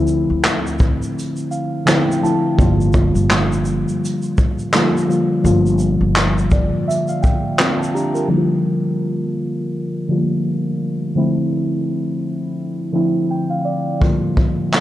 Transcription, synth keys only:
0.00 1.06 D3 medium
0.00 1.06 F3 medium
0.00 1.07 A3 medium
0.00 1.07 C4 medium
0.00 1.11 E4 medium
1.51 1.85 F5 medium
1.85 2.20 D3 medium
1.85 2.20 F3 medium
1.85 2.20 A3 medium
1.85 2.21 C4 medium
1.85 2.21 E4 medium
1.85 2.20 G5 medium
2.21 2.56 D3 medium
2.21 2.56 F3 medium
2.21 2.56 A3 medium
2.21 2.57 C4 medium
2.21 2.57 E4 medium
2.21 2.56 A5 medium
2.58 3.92 D3 medium
2.58 3.92 F3 medium
2.58 3.92 G3 medium
2.58 3.93 A#3 medium
2.58 3.93 F4 loud
4.72 5.06 D3 medium
4.72 5.06 F3 medium
4.72 5.07 G3 medium
4.72 5.07 A#3 medium
4.72 5.08 F4 medium
5.07 5.41 D3 medium
5.07 5.42 F3 medium
5.07 5.42 G3 medium
5.07 5.42 A#3 medium
5.07 5.43 F4 medium
5.42 6.77 D3 medium
5.42 6.77 F3 medium
5.42 6.78 G3 medium
5.42 6.78 A#3 medium
5.42 6.79 F4 medium
6.52 6.85 D5 medium
6.88 7.07 E5 medium
7.09 7.22 F5 medium
7.22 7.56 G5 medium
7.58 7.93 C4 medium
7.58 7.92 F4 medium
7.58 7.77 G5 medium
7.79 7.93 A5 medium
7.94 8.14 D4 medium
7.94 8.14 G4 medium
7.94 8.28 A#5 medium
8.14 8.36 F4 soft
8.14 8.49 A#4 medium
8.28 9.62 D3 medium
8.28 9.63 F3 medium
8.28 9.63 G3 medium
8.28 9.64 A#3 medium
8.28 8.38 E4 medium
8.37 9.67 F4 medium
10.08 11.09 D3 medium
10.08 11.09 F3 medium
10.08 11.09 G3 medium
10.08 10.17 A3 soft
10.08 11.10 F4 medium
10.17 11.13 A#3 medium
11.15 12.49 D3 medium
11.15 12.49 F3 medium
11.15 12.50 A3 medium
11.15 12.50 C4 medium
11.15 12.50 E4 medium
12.92 13.94 D3 medium
12.92 13.94 F3 medium
12.92 13.94 A3 medium
12.92 13.95 C4 medium
12.92 13.95 E4 medium
13.31 13.49 G5 medium
13.50 13.65 F5 medium
13.65 13.99 D5 medium
14.00 14.80 D3 medium
14.00 14.80 F3 medium
14.00 14.80 G3 medium
14.00 14.09 A3 medium
14.00 14.80 F4 medium
14.09 14.80 A#3 medium

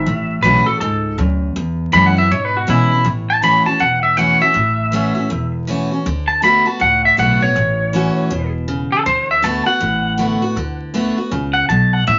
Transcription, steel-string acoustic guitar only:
0.06 0.78 A2 medium
0.42 0.65 E3 medium
0.42 0.66 A3 loud
0.42 0.66 C#4 loud
0.42 0.65 F#4 loud
0.66 0.81 C#4 soft
0.66 0.80 F#4 medium
0.81 1.17 G#2 medium
1.19 1.55 F#2 loud
1.56 2.28 E2 medium
1.92 2.15 E3 medium
1.92 2.16 G#3 loud
1.92 2.16 C#4 loud
1.92 2.16 E4 medium
2.17 2.31 C#4 medium
2.17 2.30 E4 medium
2.32 3.04 B2 medium
2.67 2.90 E3 medium
2.67 2.91 G#3 medium
2.67 2.91 C#4 medium
2.67 2.90 E4 medium
2.91 3.06 C#4 medium
2.91 3.05 E4 medium
3.04 3.78 A2 medium
3.42 3.65 E3 medium
3.42 3.66 A3 medium
3.42 3.66 C#4 loud
3.42 3.64 F#4 loud
3.66 3.81 C#4 medium
3.66 3.80 F#4 medium
3.79 4.53 E2 medium
4.17 4.40 E3 medium
4.17 4.41 A3 medium
4.17 4.41 C#4 medium
4.17 4.40 F#4 loud
4.41 4.56 C#4 medium
4.41 4.55 F#4 medium
4.54 5.27 A2 medium
4.92 5.15 E3 medium
4.92 5.16 A3 loud
4.92 5.16 C#4 loud
4.92 5.13 F#4 loud
5.15 5.31 C#4 medium
5.15 5.30 F#4 medium
5.30 6.03 E2 medium
5.67 5.90 E3 medium
5.67 5.91 A3 medium
5.67 5.91 C#4 loud
5.67 5.90 F#4 loud
5.91 6.06 C#4 medium
5.91 6.05 F#4 medium
6.06 6.41 D3 medium
6.42 6.65 D3 medium
6.42 6.66 A3 medium
6.42 6.66 B3 medium
6.42 6.64 F#4 loud
6.66 6.81 B3 soft
6.66 6.80 F#4 medium
6.80 7.53 A2 medium
7.17 7.40 D3 medium
7.17 7.41 A3 medium
7.17 7.41 B3 loud
7.17 7.39 F#4 loud
7.41 7.56 B3 medium
7.41 7.55 F#4 medium
7.56 8.28 A2 medium
7.93 8.30 E3 medium
7.93 8.30 A3 medium
7.93 8.30 C#4 medium
7.93 8.31 F#4 loud
8.31 8.67 B2 medium
8.68 9.05 C#3 medium
9.06 9.41 D3 medium
9.42 9.66 D3 medium
9.42 9.66 A3 loud
9.42 9.67 B3 loud
9.42 9.65 F#4 loud
9.66 9.81 B3 medium
9.66 9.80 F#4 medium
9.80 10.53 A2 medium
10.18 10.41 D3 medium
10.18 10.41 A3 medium
10.18 10.42 B3 medium
10.18 10.41 F#4 loud
10.42 10.57 B3 medium
10.42 10.56 F#4 medium
10.57 10.93 D3 medium
10.94 11.16 D3 medium
10.94 11.17 A3 loud
10.94 11.17 B3 loud
10.94 11.17 F#4 medium
11.18 11.32 B3 soft
11.18 11.31 F#4 medium
11.31 11.68 C#3 medium
11.70 12.06 B2 medium
12.07 12.19 A2 medium

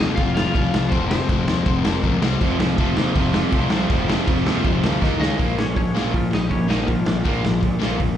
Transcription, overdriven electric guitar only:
0.00 0.16 F2 medium
0.00 0.16 C3 loud
0.00 0.17 F3 medium
0.17 0.35 F2 medium
0.17 0.35 C3 loud
0.17 0.36 F3 loud
0.36 0.53 F2 medium
0.36 0.54 C3 loud
0.36 0.54 F3 medium
0.55 0.71 F2 loud
0.55 0.72 C3 loud
0.55 0.72 F3 loud
0.72 0.90 F2 medium
0.72 0.90 C3 loud
0.72 0.91 F3 loud
0.91 1.08 F2 loud
0.91 1.09 C3 loud
0.91 1.09 F3 loud
1.09 1.27 F2 medium
1.09 1.28 C3 loud
1.09 1.29 F3 medium
1.29 1.46 F2 medium
1.29 1.48 C3 loud
1.29 1.48 F3 loud
1.48 1.64 F2 medium
1.48 1.65 C3 medium
1.48 1.65 F3 medium
1.65 1.83 F2 medium
1.65 1.84 C3 loud
1.65 1.84 F3 loud
1.84 2.01 F2 medium
1.84 2.02 C3 medium
1.84 2.02 F3 loud
2.02 2.20 F2 loud
2.02 2.20 C3 loud
2.02 2.21 F3 loud
2.22 2.39 C3 loud
2.22 2.40 G3 loud
2.22 5.01 C4 loud
2.40 2.59 F2 loud
2.40 2.59 C3 loud
2.40 2.59 F3 loud
2.59 2.76 F2 medium
2.59 2.77 C3 medium
2.59 2.77 F3 medium
2.77 2.95 F2 loud
2.77 2.96 C3 loud
2.77 2.97 F3 loud
2.96 3.13 F2 medium
2.96 3.13 C3 medium
2.96 3.14 F3 loud
3.14 3.31 F2 loud
3.14 3.31 C3 loud
3.14 3.32 F3 loud
3.32 3.49 F2 medium
3.32 3.50 C3 medium
3.32 3.50 F3 medium
3.50 3.69 F2 loud
3.50 3.70 C3 loud
3.50 3.70 F3 loud
3.70 3.88 F2 medium
3.70 3.88 C3 medium
3.70 3.89 F3 loud
3.89 4.06 F2 loud
3.89 4.07 C3 loud
3.89 4.07 F3 loud
4.07 4.25 F2 medium
4.07 4.26 C3 medium
4.07 4.26 F3 loud
4.26 4.45 F2 loud
4.26 4.44 C3 loud
4.26 4.45 F3 loud
4.46 4.62 F2 medium
4.46 4.63 C3 loud
4.46 4.63 F3 loud
4.63 4.82 F2 loud
4.63 4.82 C3 loud
4.63 4.82 F3 loud
4.83 5.00 F2 medium
4.83 5.00 C3 medium
4.83 5.01 F3 medium
5.00 5.18 D#3 loud
5.00 5.19 A#3 loud
5.00 5.19 D#4 loud
5.18 5.37 C#3 loud
5.18 5.37 G#3 loud
5.18 5.37 C#4 loud
5.37 5.56 A#2 medium
5.37 5.56 F3 medium
5.37 5.56 A#3 loud
5.57 5.74 A#2 medium
5.57 5.74 F3 medium
5.77 5.93 A#2 medium
5.77 5.93 F3 medium
5.95 6.12 A#2 medium
5.95 6.12 F3 medium
5.95 6.13 A#3 medium
6.13 6.30 A#2 medium
6.13 6.30 F3 medium
6.31 6.48 A#2 medium
6.31 6.48 F3 medium
6.49 6.67 A#2 medium
6.49 6.67 F3 medium
6.68 6.85 A#2 medium
6.68 6.86 F3 loud
6.68 6.87 A#3 loud
6.87 7.04 A#2 medium
6.87 7.04 F3 medium
7.06 7.23 A#2 medium
7.06 7.23 F3 medium
7.24 7.41 A#2 medium
7.24 7.41 F3 loud
7.24 7.43 A#3 loud
7.42 7.59 A#2 medium
7.42 7.60 F3 medium
7.61 7.78 A#2 medium
7.61 7.78 F3 medium
7.79 7.97 A#2 medium
7.79 7.97 F3 medium
7.79 7.98 A#3 medium
7.98 8.16 A#2 medium
7.98 8.16 F3 medium

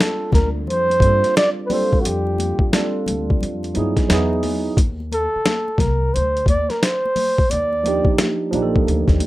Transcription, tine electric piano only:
0.00 0.28 G3 medium
0.00 0.29 C4 medium
0.00 0.30 D4 medium
0.00 0.30 F4 medium
0.00 0.31 A4 medium
1.01 1.28 G3 medium
1.01 1.29 C4 medium
1.01 1.29 D4 medium
1.01 1.30 F4 medium
1.06 1.31 A4 medium
1.69 1.96 G3 medium
1.69 1.97 C4 medium
1.69 1.97 D4 medium
1.69 1.98 F4 medium
1.74 1.99 A4 medium
2.72 2.99 G3 medium
2.72 2.99 C4 medium
2.72 3.00 D4 medium
2.72 3.01 F4 medium
2.76 3.01 A4 medium
3.74 4.07 F#3 medium
3.74 4.08 B3 medium
3.74 4.09 D#4 medium
3.74 4.10 E4 medium
3.78 4.12 G#4 medium
4.08 4.51 F#3 medium
4.08 4.52 B3 medium
4.08 4.52 D#4 medium
4.08 4.53 E4 medium
4.13 4.54 G#4 medium
7.83 8.50 F3 medium
7.83 8.51 A#3 medium
7.83 8.52 D4 medium
7.83 8.53 D#4 medium
7.88 8.54 G4 medium
8.51 9.27 F3 medium
8.51 9.27 A#3 medium
8.51 9.27 D4 medium
8.51 9.27 D#4 medium
8.55 8.62 G4 medium
8.62 9.27 A4 medium

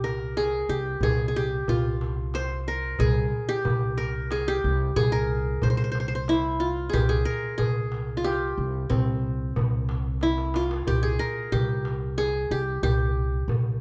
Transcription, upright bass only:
0.00 0.65 C2 medium
0.69 1.00 C2 medium
1.01 1.63 C2 medium
1.68 2.95 C2 medium
3.00 3.30 C2 medium
3.65 4.60 C2 medium
4.64 4.94 C2 medium
4.96 5.58 C2 medium
5.63 6.90 C2 medium
6.94 7.24 C2 medium
7.59 8.53 C2 medium
8.58 8.88 C2 medium
8.91 9.52 C2 medium
9.57 10.83 C2 medium
10.87 11.17 C2 medium
11.52 12.47 C2 medium
12.51 12.81 C2 medium
12.83 13.45 C2 medium
13.48 13.81 C2 medium

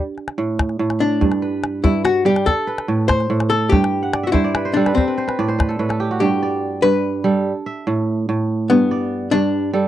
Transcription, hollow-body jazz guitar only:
0.00 0.14 D5 medium
1.00 1.86 D4 medium
1.84 2.04 E4 medium
2.05 2.26 F#4 medium
2.26 2.47 G4 medium
2.46 3.08 A4 medium
3.08 3.49 C5 loud
3.50 3.72 A4 medium
3.69 4.27 G4 medium
4.27 4.32 F#4 medium
4.32 4.76 E4 medium
4.74 4.94 D4 medium
4.95 5.95 C4 medium
6.20 6.85 G4 medium
6.82 7.21 B4 loud
8.70 9.28 B3 medium
9.31 9.70 D4 loud

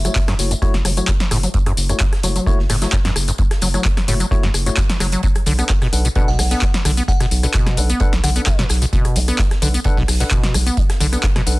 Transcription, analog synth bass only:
0.39 0.55 F#1 loud
0.74 0.81 F#1 loud
0.85 1.01 F#1 loud
1.31 1.47 F#1 medium
1.77 1.93 F#1 loud
2.23 2.39 F#1 loud
2.59 2.66 F#1 medium
2.70 2.85 F#1 loud
3.16 3.32 F#1 medium
3.62 3.78 F#1 loud
4.08 4.24 F#1 loud
4.43 4.51 F#1 medium
4.54 4.70 F#1 loud
5.00 5.16 F#1 medium
5.47 5.62 B1 loud
5.93 6.09 B1 loud
6.28 6.35 B1 medium
6.39 6.55 B1 loud
6.85 7.01 B1 loud
7.31 7.47 B1 loud
7.77 7.93 B1 loud
8.13 8.20 B1 loud
8.24 8.39 B1 loud
8.70 8.86 B1 medium
9.16 9.32 B1 loud
9.62 9.78 B1 loud
9.97 10.05 B1 loud
10.08 10.24 B1 loud
10.54 10.70 B1 medium
11.00 11.16 B1 loud
11.47 11.59 B1 medium

